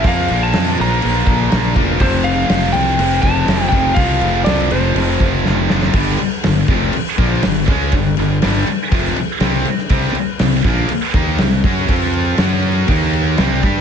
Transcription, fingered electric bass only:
\new Staff \with { instrumentName = "Fingered electric bass" } { \clef bass \time 4/4 \key f \lydian \tempo 4 = 121 f,8 bes,,8 f,8 bes,,8 bes,,8 bes,,8 bes,,8 e,,8 | f,,4 f,,8 c,8 f,,8 f,,8 f,,8 f,,8 | c,8 f,,8 c,8 f,,8 f,,8 f,,8 f,,8 f,,8 | g,,8 r8 g,,8 f,,8 r8 bes,,8 g,,8 cis,8 |
g,,8 g,,8 g,,8 r8 f,,8 r8 c,8 r8 | c,8 r8 c,8 bes,,8 r8 ees,8 c,8 fis,8 | f,4 fis,4 ees,4 c,8 g,8 | }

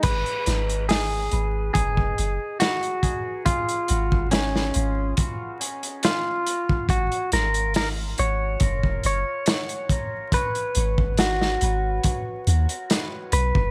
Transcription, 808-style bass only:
\new Staff \with { instrumentName = "808-style bass" } { \clef bass \time 4/4 \key gis \minor \tempo 4 = 70 gis,,16 r16 gis,,4 gis,,8 fis,,8 fis,,16 r4 r16 | r8 gis,,4 gis,,8 r2 | gis,,16 r16 gis,,4 gis,,8 fis,,8 fis,,16 r4 r16 | r8 gis,,4 gis,,8 r8 dis,16 r8. b,,16 fis,,16 | }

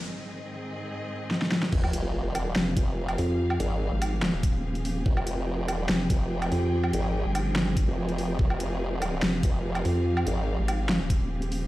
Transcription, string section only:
\new Staff \with { instrumentName = "String section" } { \time 4/4 \key f \minor \tempo 4 = 144 << { ees''1 | f''1~ | f''1 | g''1~ |
g''1 | f''1~ | f''1 | } \\ { <aes, ees c' aes'>1 | <f c' g' aes'>1~ | <f c' g' aes'>1~ | <f c' g' aes'>1~ |
<f c' g' aes'>1~ | <f c' g' aes'>1~ | <f c' g' aes'>1 | } >> }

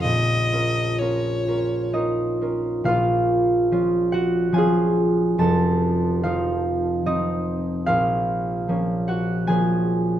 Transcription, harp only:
\new Staff \with { instrumentName = "Harp" } { \time 3/4 \key bes \minor \tempo 4 = 71 << { r2 <ees' ees''>4 | <f' f''>4. <ges' ges''>8 <aes' aes''>4 | <a' a''>4 <f' f''>4 <ees' ees''>4 | <f' f''>4. <ges' ges''>8 <aes' aes''>4 | } \\ { <bes,, f'>8 <des' f' bes'>8 <des' f' bes'>8 <des' f' bes'>8 <des' f' bes'>8 <des' f' bes'>8 | <bes,, bes,>4 <f des' f'>4 <f des' f'>4 | <f,, f,>4 <f c' ees'>4 <f c'>4 | <bes,, bes,>4 <f bes des'>4 <f bes des'>4 | } >> }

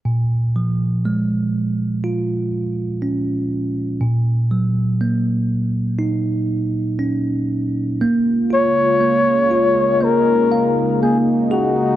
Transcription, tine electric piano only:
\new Staff \with { instrumentName = "Tine electric piano" } { \time 4/4 \key bes \minor \tempo 4 = 60 bes,8 f8 aes4 f'4 des'4 | bes,8 ges8 bes4 ees'4 des'4 | bes8 f'8 bes8 f'8 bes8 f''8 bes8 aes'8 | }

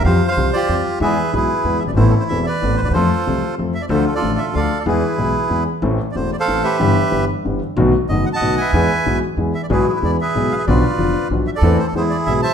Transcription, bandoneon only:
\new Staff \with { instrumentName = "Bandoneon" } { \time 3/4 \key e \phrygian \tempo 4 = 187 << { f''8. f''8. d''4 r8 | e''4 b'4. e''16 d''16 | c''8 a'16 c''16 e''8 d''4 c''16 d''16 | c''2 r8 e''16 d''16 |
c''8 a'16 d''8. e''8 f''8. d''16 | b'2~ b'8 r8 | r8. r32 d''32 c''8 d''16 f''8. e''8~ | e''4. r4. |
r4 dis''8 fis''16 a''8. gis''8~ | gis''4. r4 e''16 d''16 | b'8 gis'16 b'16 d''8 e''4 f''16 e''16 | d''2 r8 e''16 d''16~ |
d''8 c''16 a'16 c''8 d''8 e''8 a''8 | } \\ { c''8. c''8. <f' g'>4. | <gis' b'>4 <e' gis'>4. r8 | e'4. b'4. | <f' a'>2 r4 |
<f' a'>8. <f' a'>4~ <f' a'>16 <a' d''>4 | <e' gis'>2~ <e' gis'>8 r8 | r4. r16 <a' c''>8. <g' b'>8~ | <g' b'>4. r4. |
r4. r16 <dis'' fis''>8. <b' e''>8~ | <b' e''>4. r4. | <e' gis'>4. <gis' b'>4. | <f' b'>2 r8. a'16~ |
a'4 <e' gis'>4. <c'' e''>8 | } >> }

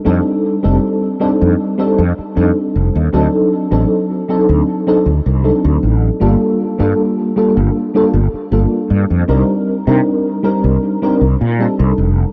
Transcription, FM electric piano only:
\new Staff \with { instrumentName = "FM electric piano" } { \time 4/4 \key c \dorian \tempo 4 = 78 <g c' d' ees' a'>8. <g c' d' ees' a'>8. <g c' d' ees' a'>8. <g c' d' ees' a'>16 r8 <g c' d' ees' a'>4 | <fis c' d' ees' a'>8. <fis c' d' ees' a'>8. <fis c' d' ees' a'>8. <fis c' d' ees' a'>16 r8 <fis c' d' ees' a'>4 | <g bes d' f' a'>8. <g bes d' f' a'>8. <g bes d' f' a'>8. <g bes d' f' a'>16 r8 <g bes d' f' a'>4 | <g c' d' ees' bes'>8. <g c' d' ees' bes'>8. <g c' d' ees' bes'>8. <g c' d' ees' bes'>16 r8 <g c' d' ees' a'>4 | }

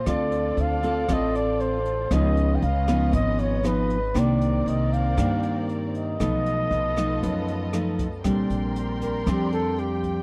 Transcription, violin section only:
\new Staff \with { instrumentName = "Violin section" } { \time 4/4 \key bes \major \tempo 4 = 117 << { <c' a' d''>1 | <des' ces'' ees''>1 | <c' bes' d''>1 | <b a' dis''>1 |
<bes' g'' c'''>1 | } \\ { f'1~ | f'1 | r1 | eis'1 |
d''1 | } >> }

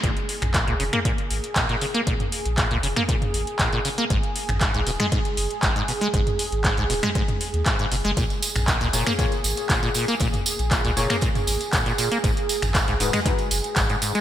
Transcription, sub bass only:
\new Staff \with { instrumentName = "Sub bass" } { \clef bass \time 4/4 \key bes \phrygian \tempo 4 = 118 bes,,16 r8 bes,,16 r16 des,16 f,,16 r8. aes,,16 r16 bes,,16 r8. | bes,,16 r8 bes,,16 r16 des,16 f,,16 r8. aes,,16 r16 bes,,16 r8. | aes,,16 r8 aes,,16 r16 ces,16 ees,,16 r8. ges,,16 r16 aes,,16 r8. | aes,,16 r8 aes,,16 r16 ces,16 ees,,16 r4 ees,16 r8 ges,,16 ges,,16 |
bes,,16 r8 bes,,16 r16 des,16 f,,16 r8. aes,,16 r16 bes,,16 r8. | bes,,16 r8 bes,,16 r16 des,16 f,,16 r8. aes,,16 r16 bes,,16 r8. | aes,,16 r8 aes,,16 r16 ces,16 ees,,16 r8. ges,,16 r16 aes,,16 r8. | }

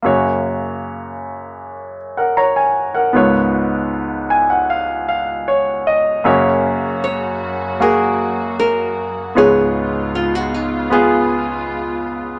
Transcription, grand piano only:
<<
  \new Staff \with { instrumentName = "Grand piano" } { \time 4/4 \key ges \major \tempo 4 = 77 << { r2 r8. <bes' ges''>16 <des'' bes''>16 aes''8 <bes' ges''>16~ | <bes' ges''>16 r4 r16 aes''16 ges''16 f''8 f''8 des''8 ees''8 | r1 | r1 | } \\ { <bes ges' des''>1 | <ces' f' des''>1 | <bes ges' des''>2 <bes ges' aes'>2 | <ces' f' des''>2 <ces' f' aes'>2 | } >> }
  \new Staff \with { instrumentName = "Grand piano" } { \clef bass \time 4/4 \key ges \major <ges, des>1 | <des, aes,>1 | <ges, des>1 | <des, aes,>1 | }
>>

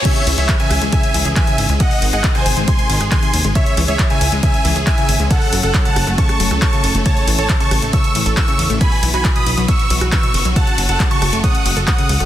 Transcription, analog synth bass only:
\new Staff \with { instrumentName = "Analog synth bass" } { \clef bass \time 4/4 \key cis \minor \tempo 4 = 137 r8 cis,16 cis,16 r8 cis,16 cis,16 r8 cis,16 cis,16 r8 gis,,16 cis,16 | r8 gis,,16 gis,,16 r8 gis,,16 gis,,16 r8 gis,,16 gis,,16 r8 dis,16 gis,,16 | r8 cis,16 cis,16 r8 cis,16 cis,16 r8 cis,16 cis,16 r8 gis,,16 cis,16 | r8 fis,,16 fis,,16 r8 fis,,16 fis,,16 r8 fis,,16 cis,16 r8 fis,,16 fis,,16 |
r8 a,,16 a,,16 r8 a,,16 a,,16 r8 a,,16 a,,16 r8 e,16 a,,16 | r8 b,,16 b,,16 r8 b,,16 b,,16 r8 b,,16 b,,16 r8 fis,,16 b,,16 | r8 fis,,16 fis,,16 r8 fis,,16 fis,,16 r8 fis,,16 fis,,16 r8 cis,16 fis,,16 | }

